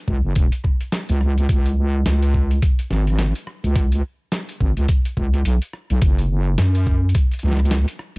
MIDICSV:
0, 0, Header, 1, 3, 480
1, 0, Start_track
1, 0, Key_signature, 4, "minor"
1, 0, Tempo, 566038
1, 1264, Time_signature, 4, 2, 24, 8
1, 6940, End_track
2, 0, Start_track
2, 0, Title_t, "Wobble bass"
2, 0, Program_c, 0, 39
2, 66, Note_on_c, 0, 37, 91
2, 184, Note_off_c, 0, 37, 0
2, 204, Note_on_c, 0, 30, 100
2, 287, Note_off_c, 0, 30, 0
2, 306, Note_on_c, 0, 28, 92
2, 424, Note_off_c, 0, 28, 0
2, 927, Note_on_c, 0, 37, 98
2, 1249, Note_off_c, 0, 37, 0
2, 1264, Note_on_c, 0, 37, 100
2, 1728, Note_off_c, 0, 37, 0
2, 1743, Note_on_c, 0, 37, 100
2, 2208, Note_off_c, 0, 37, 0
2, 2461, Note_on_c, 0, 32, 100
2, 2821, Note_off_c, 0, 32, 0
2, 3083, Note_on_c, 0, 37, 98
2, 3407, Note_off_c, 0, 37, 0
2, 3906, Note_on_c, 0, 32, 95
2, 4023, Note_off_c, 0, 32, 0
2, 4043, Note_on_c, 0, 37, 97
2, 4127, Note_off_c, 0, 37, 0
2, 4385, Note_on_c, 0, 37, 100
2, 4609, Note_off_c, 0, 37, 0
2, 4622, Note_on_c, 0, 35, 101
2, 4742, Note_off_c, 0, 35, 0
2, 5005, Note_on_c, 0, 35, 96
2, 5088, Note_off_c, 0, 35, 0
2, 5102, Note_on_c, 0, 30, 100
2, 5567, Note_off_c, 0, 30, 0
2, 5583, Note_on_c, 0, 42, 99
2, 6048, Note_off_c, 0, 42, 0
2, 6303, Note_on_c, 0, 37, 99
2, 6662, Note_off_c, 0, 37, 0
2, 6940, End_track
3, 0, Start_track
3, 0, Title_t, "Drums"
3, 66, Note_on_c, 9, 36, 65
3, 150, Note_off_c, 9, 36, 0
3, 301, Note_on_c, 9, 42, 79
3, 306, Note_on_c, 9, 36, 110
3, 385, Note_off_c, 9, 42, 0
3, 391, Note_off_c, 9, 36, 0
3, 441, Note_on_c, 9, 42, 53
3, 526, Note_off_c, 9, 42, 0
3, 541, Note_on_c, 9, 37, 35
3, 546, Note_on_c, 9, 36, 63
3, 626, Note_off_c, 9, 37, 0
3, 631, Note_off_c, 9, 36, 0
3, 683, Note_on_c, 9, 42, 35
3, 768, Note_off_c, 9, 42, 0
3, 783, Note_on_c, 9, 38, 127
3, 783, Note_on_c, 9, 42, 80
3, 868, Note_off_c, 9, 38, 0
3, 868, Note_off_c, 9, 42, 0
3, 924, Note_on_c, 9, 42, 53
3, 1009, Note_off_c, 9, 42, 0
3, 1025, Note_on_c, 9, 37, 52
3, 1110, Note_off_c, 9, 37, 0
3, 1167, Note_on_c, 9, 42, 36
3, 1252, Note_off_c, 9, 42, 0
3, 1265, Note_on_c, 9, 36, 124
3, 1265, Note_on_c, 9, 42, 82
3, 1350, Note_off_c, 9, 36, 0
3, 1350, Note_off_c, 9, 42, 0
3, 1406, Note_on_c, 9, 42, 49
3, 1491, Note_off_c, 9, 42, 0
3, 1745, Note_on_c, 9, 38, 126
3, 1745, Note_on_c, 9, 42, 77
3, 1830, Note_off_c, 9, 38, 0
3, 1830, Note_off_c, 9, 42, 0
3, 1886, Note_on_c, 9, 42, 48
3, 1971, Note_off_c, 9, 42, 0
3, 1986, Note_on_c, 9, 36, 63
3, 2071, Note_off_c, 9, 36, 0
3, 2127, Note_on_c, 9, 42, 37
3, 2212, Note_off_c, 9, 42, 0
3, 2224, Note_on_c, 9, 42, 72
3, 2226, Note_on_c, 9, 36, 105
3, 2309, Note_off_c, 9, 42, 0
3, 2311, Note_off_c, 9, 36, 0
3, 2365, Note_on_c, 9, 42, 50
3, 2450, Note_off_c, 9, 42, 0
3, 2464, Note_on_c, 9, 38, 64
3, 2549, Note_off_c, 9, 38, 0
3, 2605, Note_on_c, 9, 37, 16
3, 2605, Note_on_c, 9, 42, 35
3, 2629, Note_off_c, 9, 37, 0
3, 2629, Note_on_c, 9, 37, 21
3, 2653, Note_off_c, 9, 37, 0
3, 2653, Note_on_c, 9, 37, 24
3, 2678, Note_off_c, 9, 37, 0
3, 2678, Note_on_c, 9, 37, 29
3, 2689, Note_off_c, 9, 42, 0
3, 2702, Note_on_c, 9, 38, 125
3, 2702, Note_on_c, 9, 42, 80
3, 2763, Note_off_c, 9, 37, 0
3, 2787, Note_off_c, 9, 38, 0
3, 2787, Note_off_c, 9, 42, 0
3, 2845, Note_on_c, 9, 42, 51
3, 2929, Note_off_c, 9, 42, 0
3, 2943, Note_on_c, 9, 37, 53
3, 3028, Note_off_c, 9, 37, 0
3, 3087, Note_on_c, 9, 42, 35
3, 3172, Note_off_c, 9, 42, 0
3, 3185, Note_on_c, 9, 36, 119
3, 3186, Note_on_c, 9, 42, 77
3, 3270, Note_off_c, 9, 36, 0
3, 3271, Note_off_c, 9, 42, 0
3, 3324, Note_on_c, 9, 42, 52
3, 3409, Note_off_c, 9, 42, 0
3, 3663, Note_on_c, 9, 38, 119
3, 3663, Note_on_c, 9, 42, 78
3, 3748, Note_off_c, 9, 38, 0
3, 3748, Note_off_c, 9, 42, 0
3, 3806, Note_on_c, 9, 42, 48
3, 3891, Note_off_c, 9, 42, 0
3, 3905, Note_on_c, 9, 36, 63
3, 3990, Note_off_c, 9, 36, 0
3, 4044, Note_on_c, 9, 42, 37
3, 4129, Note_off_c, 9, 42, 0
3, 4142, Note_on_c, 9, 42, 76
3, 4145, Note_on_c, 9, 36, 99
3, 4227, Note_off_c, 9, 42, 0
3, 4230, Note_off_c, 9, 36, 0
3, 4285, Note_on_c, 9, 42, 52
3, 4370, Note_off_c, 9, 42, 0
3, 4384, Note_on_c, 9, 36, 61
3, 4469, Note_off_c, 9, 36, 0
3, 4525, Note_on_c, 9, 42, 36
3, 4610, Note_off_c, 9, 42, 0
3, 4623, Note_on_c, 9, 42, 80
3, 4708, Note_off_c, 9, 42, 0
3, 4763, Note_on_c, 9, 42, 50
3, 4848, Note_off_c, 9, 42, 0
3, 4862, Note_on_c, 9, 37, 53
3, 4947, Note_off_c, 9, 37, 0
3, 5004, Note_on_c, 9, 42, 35
3, 5088, Note_off_c, 9, 42, 0
3, 5101, Note_on_c, 9, 42, 81
3, 5104, Note_on_c, 9, 36, 119
3, 5186, Note_off_c, 9, 42, 0
3, 5189, Note_off_c, 9, 36, 0
3, 5245, Note_on_c, 9, 42, 52
3, 5330, Note_off_c, 9, 42, 0
3, 5580, Note_on_c, 9, 38, 116
3, 5580, Note_on_c, 9, 42, 79
3, 5665, Note_off_c, 9, 38, 0
3, 5665, Note_off_c, 9, 42, 0
3, 5723, Note_on_c, 9, 42, 51
3, 5808, Note_off_c, 9, 42, 0
3, 5823, Note_on_c, 9, 36, 60
3, 5908, Note_off_c, 9, 36, 0
3, 6013, Note_on_c, 9, 42, 39
3, 6060, Note_off_c, 9, 42, 0
3, 6060, Note_on_c, 9, 42, 77
3, 6063, Note_on_c, 9, 36, 101
3, 6145, Note_off_c, 9, 42, 0
3, 6148, Note_off_c, 9, 36, 0
3, 6203, Note_on_c, 9, 42, 23
3, 6220, Note_off_c, 9, 42, 0
3, 6220, Note_on_c, 9, 42, 32
3, 6267, Note_off_c, 9, 42, 0
3, 6267, Note_on_c, 9, 42, 42
3, 6302, Note_on_c, 9, 38, 28
3, 6325, Note_off_c, 9, 38, 0
3, 6325, Note_on_c, 9, 38, 32
3, 6348, Note_off_c, 9, 38, 0
3, 6348, Note_on_c, 9, 38, 37
3, 6351, Note_off_c, 9, 42, 0
3, 6372, Note_off_c, 9, 38, 0
3, 6372, Note_on_c, 9, 38, 43
3, 6381, Note_off_c, 9, 38, 0
3, 6381, Note_on_c, 9, 38, 48
3, 6417, Note_off_c, 9, 38, 0
3, 6417, Note_on_c, 9, 38, 54
3, 6441, Note_on_c, 9, 37, 39
3, 6489, Note_on_c, 9, 42, 35
3, 6502, Note_off_c, 9, 38, 0
3, 6526, Note_off_c, 9, 37, 0
3, 6538, Note_off_c, 9, 42, 0
3, 6538, Note_on_c, 9, 38, 120
3, 6538, Note_on_c, 9, 42, 81
3, 6623, Note_off_c, 9, 38, 0
3, 6623, Note_off_c, 9, 42, 0
3, 6681, Note_on_c, 9, 42, 54
3, 6766, Note_off_c, 9, 42, 0
3, 6778, Note_on_c, 9, 37, 56
3, 6862, Note_off_c, 9, 37, 0
3, 6940, End_track
0, 0, End_of_file